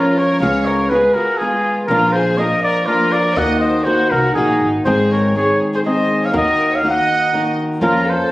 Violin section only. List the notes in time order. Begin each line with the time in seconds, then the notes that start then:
Already playing: F4
0.18 A#4
0.42 C#5
0.67 A#4
0.92 G#4
1.16 F#4
1.41 F4
1.91 F4
2.14 G#4
2.39 A#4
2.63 A#4
2.89 F4
3.13 A#4
3.35 D#5
3.61 C5
3.85 F#4
4.12 F#4
4.36 D#4
4.88 G#4
5.13 A#4
5.37 G#4
5.74 G#4
5.87 C5
6.25 C#5
6.36 A#4
6.71 C#5
6.85 D#5
7.82 F4
8.06 A4